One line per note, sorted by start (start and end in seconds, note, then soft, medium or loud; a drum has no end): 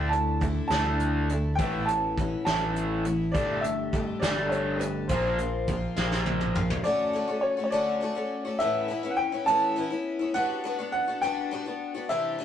0.00 0.59 D2 medium
0.00 0.39 D3 medium
0.00 0.41 A3 medium
0.00 0.42 D4 medium
0.00 0.43 E4 medium
0.00 0.12 G5 loud
0.09 0.39 D3 medium
0.09 0.39 A3 medium
0.09 0.65 A5 medium
0.09 closed hi-hat medium
0.41 0.70 D3 medium
0.41 0.71 A3 medium
0.41 0.71 D4 medium
0.41 0.70 E4 medium
0.41 kick medium
0.41 closed hi-hat medium
0.68 1.59 D2 medium
0.68 1.28 E4 medium
0.68 1.60 A5 loud
0.68 snare loud
0.68 closed hi-hat medium
0.72 1.30 D3 medium
0.72 1.32 A3 medium
0.72 1.30 D4 medium
1.00 closed hi-hat medium
1.29 1.56 D3 medium
1.29 1.59 A3 soft
1.29 1.60 D4 soft
1.29 1.59 E4 soft
1.29 closed hi-hat medium
1.55 2.35 A1 loud
1.55 2.17 A2 medium
1.55 2.16 E3 medium
1.55 1.87 G5 loud
1.55 kick loud
1.55 closed hi-hat medium
1.60 1.87 A3 medium
1.60 2.18 B3 medium
1.60 2.18 C#4 medium
1.60 2.18 E4 medium
1.86 2.15 A2 medium
1.86 2.15 E3 medium
1.86 2.42 A5 loud
1.86 closed hi-hat medium
2.18 2.44 A2 medium
2.18 2.47 E3 medium
2.18 2.48 B3 medium
2.18 2.47 C#4 medium
2.18 2.46 E4 medium
2.18 kick medium
2.18 closed hi-hat medium
2.45 3.35 A1 medium
2.45 3.07 E3 medium
2.45 3.04 A3 medium
2.45 3.06 B3 medium
2.45 3.06 C#4 medium
2.45 3.05 E4 medium
2.45 3.30 A5 medium
2.45 snare loud
2.45 closed hi-hat medium
2.50 3.07 A2 medium
2.76 closed hi-hat medium
3.05 3.32 A2 medium
3.05 3.32 E3 medium
3.05 3.36 C#4 soft
3.05 3.35 E4 soft
3.05 closed hi-hat medium
3.09 3.35 B3 soft
3.32 4.11 G1 medium
3.32 3.91 G3 medium
3.32 3.92 A3 medium
3.32 3.60 D5 medium
3.32 kick loud
3.32 closed hi-hat medium
3.36 3.94 D4 medium
3.36 3.94 G4 medium
3.61 3.90 G3 medium
3.61 3.91 A3 medium
3.61 4.17 E5 medium
3.61 closed hi-hat medium
3.93 4.22 G3 medium
3.93 4.22 A3 medium
3.93 4.22 D4 medium
3.93 4.21 G4 medium
3.93 kick medium
3.93 closed hi-hat medium
4.20 5.10 G1 medium
4.20 4.80 D4 medium
4.20 4.78 G4 medium
4.20 4.51 D5 medium
4.20 snare loud
4.20 closed hi-hat medium
4.24 4.82 G3 medium
4.24 4.82 A3 medium
4.49 4.81 C#5 medium
4.49 closed hi-hat medium
4.78 5.08 G3 medium
4.78 5.10 D4 soft
4.78 5.10 G4 medium
4.78 5.10 B4 medium
4.78 closed hi-hat medium
4.83 5.11 A3 soft
5.08 5.86 A#1 loud
5.08 5.68 A#2 medium
5.08 5.67 F3 medium
5.08 5.67 A#3 medium
5.08 5.68 C4 medium
5.08 6.22 C5 medium
5.08 kick medium
5.08 closed hi-hat medium
5.12 5.69 F4 medium
5.38 5.66 A#2 medium
5.38 5.66 F3 medium
5.38 closed hi-hat medium
5.68 5.95 A#2 medium
5.68 5.97 F3 medium
5.68 5.97 A#3 medium
5.68 5.96 C4 medium
5.68 5.96 F4 medium
5.68 kick medium
5.68 closed hi-hat medium
5.96 6.74 A#1 medium
5.96 6.57 A#2 medium
5.96 6.57 F3 medium
5.96 6.56 A#3 medium
5.96 6.56 C4 medium
5.96 6.54 F4 medium
5.96 snare medium
6.11 snare medium
6.26 high tom medium
6.41 mid tom medium
6.55 6.82 A#2 medium
6.55 6.83 F3 medium
6.55 6.85 A#3 soft
6.55 6.85 C4 soft
6.55 6.85 F4 medium
6.55 mid tom medium
6.70 floor tom medium
6.83 7.12 D3 medium
6.83 7.13 A3 medium
6.83 7.14 C#4 medium
6.83 7.15 F#4 medium
6.83 7.45 D5 loud
7.13 7.29 D3 medium
7.13 7.29 A3 medium
7.13 7.28 C#4 medium
7.13 7.26 F#4 medium
7.28 7.59 A3 soft
7.28 7.58 C#4 medium
7.28 7.56 F#4 medium
7.41 7.62 C#5 medium
7.57 7.71 A3 soft
7.57 7.72 C#4 soft
7.57 7.72 F#4 medium
7.64 7.72 C#5 medium
7.70 8.00 D3 medium
7.70 8.01 A3 medium
7.70 8.02 C#4 medium
7.70 8.03 F#4 medium
7.70 8.62 D5 medium
8.01 8.16 D3 medium
8.01 8.16 A3 medium
8.01 8.15 C#4 medium
8.01 8.14 F#4 medium
8.15 8.46 A3 medium
8.15 8.45 C#4 medium
8.15 8.44 F#4 medium
8.45 8.61 A3 soft
8.45 8.61 C#4 medium
8.45 8.60 F#4 medium
8.59 8.90 A2 medium
8.59 8.87 E3 medium
8.59 8.89 B3 medium
8.59 8.89 C#4 medium
8.59 8.90 E4 medium
8.59 9.13 E5 loud
8.88 9.04 E3 medium
8.88 9.04 B3 medium
8.88 9.04 C#4 medium
8.88 9.02 E4 medium
9.03 9.34 B3 soft
9.03 9.33 C#4 medium
9.03 9.31 E4 medium
9.10 9.18 F#5 medium
9.17 9.48 G5 loud
9.32 9.47 B3 soft
9.32 9.47 C#4 soft
9.32 9.47 E4 medium
9.46 9.77 A2 medium
9.46 9.75 E3 medium
9.46 9.76 B3 medium
9.46 9.77 C#4 medium
9.46 9.78 E4 loud
9.46 10.09 A5 loud
9.76 9.91 E3 medium
9.76 9.92 B3 medium
9.76 9.91 C#4 medium
9.76 9.89 E4 medium
9.90 10.21 B3 soft
9.90 10.20 C#4 medium
9.90 10.18 E4 medium
10.19 10.34 B3 soft
10.19 10.35 C#4 medium
10.19 10.35 E4 medium
10.34 10.62 G3 medium
10.34 10.64 B3 medium
10.34 10.64 D4 medium
10.34 10.65 F#4 medium
10.34 10.91 F#5 loud
10.64 10.79 G3 medium
10.64 10.79 B3 medium
10.64 10.79 D4 medium
10.64 10.77 F#4 medium
10.79 11.09 B3 medium
10.79 11.08 D4 medium
10.79 11.06 F#4 medium
10.92 11.23 F#5 loud
11.08 11.22 B3 soft
11.08 11.23 D4 medium
11.08 11.23 F#4 medium
11.21 11.50 G3 medium
11.21 11.51 B3 medium
11.21 11.52 D4 medium
11.21 11.53 F#4 medium
11.21 12.05 G5 loud
11.51 11.66 G3 medium
11.51 11.67 B3 medium
11.51 11.66 D4 medium
11.51 11.65 F#4 medium
11.66 11.96 B3 soft
11.66 11.95 D4 medium
11.66 11.93 F#4 medium
11.95 12.10 B3 soft
11.95 12.10 D4 medium
11.95 12.10 F#4 medium
12.09 12.39 C3 medium
12.09 12.37 E3 medium
12.09 12.39 G3 medium
12.09 12.39 D4 medium
12.09 12.40 G4 medium
12.09 12.45 E5 medium
12.39 12.45 E3 medium
12.39 12.45 G3 medium
12.39 12.45 D4 medium
12.39 12.45 G4 medium